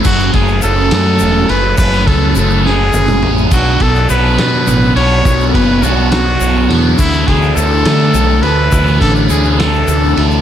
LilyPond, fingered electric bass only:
\new Staff \with { instrumentName = "Fingered electric bass" } { \clef bass \time 6/8 \key b \dorian \tempo 4. = 69 fis,,8 fis,,8 fis,,8 fis,8 e,,8 fis,,8 | fis,,8 cis,8 fis,,4 fis,,8 a,,8 | b,,8 b,,8 b,,8 b,8 a,,8 b,,8 | b,,8 fis,,8 b,,4 b,,8 e,8 |
d,8 d,8 d,8 d8 b,,8 d,8 | d,8 a,,8 d,4 d,8 d,8 | }